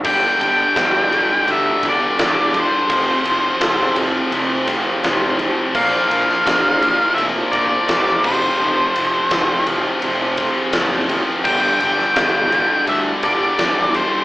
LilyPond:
<<
  \new Staff \with { instrumentName = "Lead electric guitar" } { \time 4/4 \key g \minor \tempo 4 = 84 g''8 g''4. e''8 d''4 c''8~ | c''4. r2 r8 | f''8 f''4. e''8 d''4 c''8~ | c''4. r2 r8 |
g''8 g''4. e''8 d''4 c''8 | }
  \new Staff \with { instrumentName = "Distorted electric guitar" } { \clef bass \time 4/4 \key g \minor <g, d g>8 <g, d g>8 <g, d g>8 <g, d g>8 <g, d g>8 <g, d g>8 <g, d g>8 <g, d g>8 | <f, c f>8 <f, c f>8 <f, c f>8 <f, c f>8 <f, c f>8 <f, c f>8 <f, c f>8 <f, c f>8 | <bes, f bes>8 <bes, f bes>8 <bes, f bes>8 <bes, f bes>8 <bes, f bes>8 <bes, f bes>8 <bes, f bes>8 <f, c f>8 | <f, c f>8 <f, c f>8 <f, c f>8 <f, c f>8 <f, c f>8 <f, c f>8 <f, c f>8 <f, c f>8 |
<g, d g>8 <g, d g>8 <g, d g>8 <g, d g>8 <g, d g>8 <g, d g>8 <g, d g>8 <g, d g>8 | }
  \new Staff \with { instrumentName = "Distorted electric guitar" } { \clef bass \time 4/4 \key g \minor <g, d g>8 <g, d g>8 <g, d g>8 <g, d g>8 <g, d g>8 <g, d g>8 <g, d g>8 <g, d g>8 | <f, c f>8 <f, c f>8 <f, c f>8 <f, c f>8 <f, c f>8 <f, c f>8 <f, c f>8 <f, c f>8 | <bes, f bes>8 <bes, f bes>8 <bes, f bes>8 <bes, f bes>8 <bes, f bes>8 <bes, f bes>8 <bes, f bes>8 <f, c f>8 | <f, c f>8 <f, c f>8 <f, c f>8 <f, c f>8 <f, c f>8 <f, c f>8 <f, c f>8 <f, c f>8 |
<g, d g>8 <g, d g>8 <g, d g>8 <g, d g>8 <g, d g>8 <g, d g>8 <g, d g>8 <g, d g>8 | }
  \new Staff \with { instrumentName = "Distorted electric guitar" } { \clef bass \time 4/4 \key g \minor <g, d g>8 <g, d g>8 <g, d g>8 <g, d g>8 <g, d g>8 <g, d g>8 <g, d g>8 <g, d g>8 | <f, c f>8 <f, c f>8 <f, c f>8 <f, c f>8 <f, c f>8 <f, c f>8 <f, c f>8 <f, c f>8 | <bes, f bes>8 <bes, f bes>8 <bes, f bes>8 <bes, f bes>8 <bes, f bes>8 <bes, f bes>8 <bes, f bes>8 <f, c f>8 | <f, c f>8 <f, c f>8 <f, c f>8 <f, c f>8 <f, c f>8 <f, c f>8 <f, c f>8 <f, c f>8 |
<g, d g>8 <g, d g>8 <g, d g>8 <g, d g>8 <g, d g>8 <g, d g>8 <g, d g>8 <g, d g>8 | }
  \new Staff \with { instrumentName = "Picked electric bass" } { \clef bass \time 4/4 \key g \minor g,,8 g,,8 g,,4 d,8 g,,8 e,,4 | f,,8 f,,8 f,,8 f,,8 f,,4 f,,4 | bes,,8 bes,,8 bes,,4 f,,8 bes,,8 e,,8 f,,8 | f,,8 f,,8 f,,8 f,,8 f,,4 fis,,4 |
g,,8 g,,8 g,,4 d,8 g,,8 e,,4 | }
  \new DrumStaff \with { instrumentName = "Drums" } \drummode { \time 4/4 <cymc bd>8 cymr8 <bd cymr sn>8 cymr8 cymr8 <bd cymr sn>8 <cymr sn>8 cymr8 | <bd cymr>8 cymr8 <bd cymr sn>8 cymr8 cymr8 <bd cymr sn>8 <cymr sn>8 cymr8 | <cymc bd>8 cymr16 sn16 <bd cymr sn>8 cymr8 cymr8 <bd cymr>8 <cymr sn>16 sn16 <cymc bd>8 | r8 cymr8 <bd cymr sn>8 cymr8 cymr8 <bd cymr>8 <cymr sn>16 sn16 cymr8 |
<cymc bd>8 cymr16 sn16 <bd cymr sn>8 cymr8 cymr8 <bd cymr sn>8 <cymr sn>8 cymr8 | }
>>